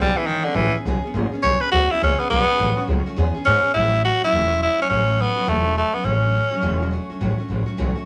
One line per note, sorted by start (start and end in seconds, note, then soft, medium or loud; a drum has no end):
0.00 0.17 B1 loud
0.00 0.18 G3 loud
0.00 0.17 G#3 medium
0.00 0.18 B3 medium
0.00 0.18 C#4 medium
0.00 0.15 G#4 medium
0.17 0.28 E3 loud
0.17 0.28 B3 soft
0.17 0.29 C#4 soft
0.17 0.28 G#4 medium
0.26 0.45 G#1 medium
0.26 0.46 D#3 medium
0.26 0.46 E3 medium
0.26 0.47 G#3 medium
0.26 0.47 B3 medium
0.26 0.46 C#4 medium
0.30 0.44 G#4 medium
0.44 0.57 D3 medium
0.44 0.57 C#4 medium
0.44 0.57 G#4 medium
0.44 muted upright bass stroke soft
0.48 0.57 B3 soft
0.55 0.73 A1 loud
0.55 0.74 E3 loud
0.55 0.75 G#3 medium
0.55 0.76 B3 medium
0.55 0.75 C#4 medium
0.60 0.73 G#4 medium
0.74 0.86 B3 soft
0.74 0.86 C#4 medium
0.74 0.85 G#4 medium
0.74 muted upright bass stroke medium
0.85 1.03 B1 medium
0.85 1.04 E3 medium
0.85 1.04 G#3 medium
0.85 1.05 B3 medium
0.85 1.04 C#4 medium
0.85 1.02 G#4 loud
1.04 1.14 B3 medium
1.04 1.15 C#4 medium
1.04 1.14 G#4 medium
1.04 muted upright bass stroke medium
1.14 1.32 G#1 loud
1.14 1.33 G#3 medium
1.14 1.33 B3 medium
1.14 1.32 C#4 medium
1.14 1.31 G#4 medium
1.32 1.43 B3 medium
1.32 1.43 C#4 medium
1.32 1.43 G#4 medium
1.32 muted upright bass stroke medium
1.42 1.61 B1 medium
1.42 1.61 E3 medium
1.42 1.62 G#3 medium
1.42 1.62 B3 medium
1.42 1.61 C#4 medium
1.42 1.59 G#4 medium
1.42 1.62 C#5 loud
1.61 1.71 B3 soft
1.61 1.72 C#4 soft
1.61 1.72 G#4 medium
1.61 1.71 B4 medium
1.61 muted upright bass stroke medium
1.71 1.90 D2 loud
1.71 1.90 G#3 medium
1.71 1.90 B3 medium
1.71 1.90 C#4 medium
1.71 1.92 F#4 loud
1.71 1.89 G#4 medium
1.90 2.00 B3 medium
1.90 2.01 C#4 medium
1.90 2.01 E4 medium
1.90 2.01 G#4 medium
1.90 muted upright bass stroke medium
2.00 2.19 C#2 medium
2.00 2.19 E3 medium
2.00 2.19 G#3 medium
2.00 2.19 B3 medium
2.00 2.19 C#4 medium
2.00 2.21 C#4 loud
2.00 2.18 G#4 medium
2.19 2.29 B3 loud
2.19 2.30 B3 soft
2.19 2.30 C#4 medium
2.19 2.30 G#4 medium
2.19 muted upright bass stroke medium
2.30 2.48 B1 medium
2.30 2.48 G#3 medium
2.30 2.86 B3 loud
2.30 2.49 B3 medium
2.30 2.49 C#4 medium
2.30 2.47 G#4 medium
2.48 2.59 B3 soft
2.48 2.59 C#4 medium
2.48 2.59 G#4 medium
2.58 2.77 A1 loud
2.58 2.77 A2 medium
2.58 2.77 E3 medium
2.58 2.77 F#3 medium
2.58 2.78 A3 medium
2.58 2.77 C#4 medium
2.58 2.76 F#4 medium
2.77 2.86 F#3 medium
2.77 2.88 A3 medium
2.77 2.88 C#4 medium
2.77 2.88 F#4 medium
2.87 3.05 C#2 loud
2.87 3.06 F#3 medium
2.87 3.07 A3 medium
2.87 3.06 C#4 medium
2.87 3.05 F#4 medium
3.06 3.17 F#3 medium
3.06 3.17 A3 medium
3.06 3.17 C#4 medium
3.06 3.17 F#4 medium
3.06 muted upright bass stroke medium
3.16 3.35 E2 loud
3.16 3.35 E3 medium
3.16 3.35 G#3 medium
3.16 3.35 B3 loud
3.16 3.35 C#4 loud
3.16 3.33 G#4 loud
3.34 3.45 B3 medium
3.34 3.46 C#4 medium
3.34 3.45 G#4 medium
3.34 muted upright bass stroke medium
3.44 3.64 G#2 loud
3.44 3.63 G#3 medium
3.44 3.64 B3 medium
3.44 3.72 C#4 loud
3.44 3.63 C#4 medium
3.44 3.62 G#4 medium
3.63 3.75 B3 soft
3.63 3.75 C#4 medium
3.63 3.74 G#4 medium
3.63 muted upright bass stroke medium
3.74 4.08 A1 medium
3.74 3.92 A2 medium
3.74 3.92 E3 medium
3.74 3.93 F#3 medium
3.74 3.93 A3 medium
3.74 3.92 C#4 medium
3.74 4.01 E4 loud
3.74 3.91 F#4 medium
3.92 4.02 F#3 soft
3.92 4.03 A3 soft
3.92 4.03 C#4 soft
3.92 4.03 F#4 medium
4.03 4.21 F#3 medium
4.03 4.22 A3 medium
4.03 4.21 C#4 medium
4.03 4.21 F#4 loud
4.21 4.32 F#3 soft
4.21 4.33 A3 soft
4.21 4.32 C#4 soft
4.21 4.60 E4 loud
4.21 4.32 F#4 medium
4.21 muted upright bass stroke medium
4.32 4.65 E1 medium
4.32 4.50 A2 medium
4.32 4.51 E3 medium
4.32 4.51 F#3 medium
4.32 4.51 A3 medium
4.32 4.51 C#4 medium
4.32 4.49 F#4 medium
4.51 4.60 F#3 soft
4.51 4.61 A3 soft
4.51 4.62 C#4 medium
4.51 4.61 F#4 medium
4.61 4.79 F#3 medium
4.61 4.79 A3 medium
4.61 4.79 C#4 medium
4.61 4.79 E4 loud
4.79 4.88 F#3 soft
4.79 4.89 A3 soft
4.79 4.89 C#4 soft
4.79 4.86 C#4 medium
4.79 4.89 F#4 medium
4.79 muted upright bass stroke medium
4.89 5.23 A1 medium
4.89 5.07 A2 medium
4.89 5.08 E3 medium
4.89 5.08 F#3 medium
4.89 5.08 A3 medium
4.89 5.23 C#4 loud
4.89 5.08 C#4 medium
4.89 5.06 F#4 medium
5.08 5.16 F#3 soft
5.08 5.17 A3 soft
5.08 5.18 C#4 soft
5.08 5.19 F#4 medium
5.17 5.36 F#3 medium
5.17 5.36 A3 soft
5.17 5.35 C#4 medium
5.17 5.35 F#4 medium
5.21 5.50 B3 loud
5.36 5.46 F#3 soft
5.36 5.46 A3 soft
5.36 5.46 C#4 soft
5.36 5.47 F#4 medium
5.46 5.80 E1 medium
5.46 5.65 A2 medium
5.46 5.65 E3 medium
5.46 5.65 F#3 medium
5.46 5.64 A3 medium
5.46 5.77 A3 loud
5.46 5.63 C#4 medium
5.46 5.62 F#4 medium
5.63 5.72 F#3 soft
5.63 5.74 A3 soft
5.63 5.74 C#4 soft
5.63 5.75 F#4 soft
5.73 5.93 F#3 medium
5.73 5.94 A3 medium
5.73 5.93 C#4 medium
5.73 5.92 F#4 medium
5.77 5.95 A3 medium
5.93 6.03 F#3 soft
5.93 6.03 A3 soft
5.93 6.07 B3 medium
5.93 6.04 C#4 soft
5.93 6.04 F#4 medium
5.93 muted upright bass stroke medium
6.03 6.38 A1 medium
6.03 6.23 A2 medium
6.03 6.23 E3 medium
6.03 6.23 F#3 medium
6.03 6.23 A3 medium
6.03 6.92 C#4 medium
6.03 6.22 C#4 medium
6.03 6.21 F#4 medium
6.22 6.32 F#3 soft
6.22 6.33 A3 soft
6.22 6.34 C#4 soft
6.22 6.33 F#4 soft
6.33 6.52 F#3 medium
6.33 6.52 A3 medium
6.33 6.51 C#4 medium
6.33 6.50 F#4 medium
6.51 6.61 F#3 medium
6.51 6.62 A3 medium
6.51 6.62 C#4 medium
6.51 6.62 F#4 medium
6.51 muted upright bass stroke medium
6.61 6.96 E1 medium
6.61 6.81 A2 medium
6.61 6.81 E3 medium
6.61 6.81 F#3 medium
6.61 6.81 A3 medium
6.61 6.81 C#4 loud
6.61 6.79 F#4 medium
6.80 6.90 F#3 medium
6.80 6.91 A3 medium
6.80 6.92 C#4 medium
6.80 6.91 F#4 medium
6.91 7.10 F#3 medium
6.91 7.11 A3 medium
6.91 7.10 C#4 medium
6.91 7.09 F#4 medium
7.10 7.20 F#3 medium
7.10 7.20 A3 soft
7.10 7.21 C#4 medium
7.10 7.21 F#4 medium
7.10 muted upright bass stroke medium
7.20 7.34 A1 medium
7.20 7.39 A2 medium
7.20 7.39 E3 medium
7.20 7.39 F#3 medium
7.20 7.39 A3 medium
7.20 7.39 C#4 medium
7.20 7.37 F#4 medium
7.38 7.47 F#3 soft
7.38 7.49 A3 soft
7.38 7.50 C#4 medium
7.38 7.49 F#4 medium
7.38 muted upright bass stroke medium
7.48 7.65 A1 medium
7.48 7.67 F#3 medium
7.48 7.67 A3 medium
7.48 7.66 C#4 medium
7.48 7.65 F#4 medium
7.66 7.77 F#3 medium
7.66 7.77 A3 medium
7.66 7.78 C#4 medium
7.66 7.78 F#4 medium
7.66 muted upright bass stroke medium
7.77 7.94 B1 medium
7.77 7.96 A2 medium
7.77 7.97 E3 medium
7.77 7.97 F#3 loud
7.77 7.96 A3 medium
7.77 7.96 C#4 medium
7.77 7.94 F#4 medium
7.96 8.05 F#3 soft
7.96 8.05 A3 soft
7.96 8.05 C#4 medium
7.96 8.05 F#4 medium
7.96 muted upright bass stroke medium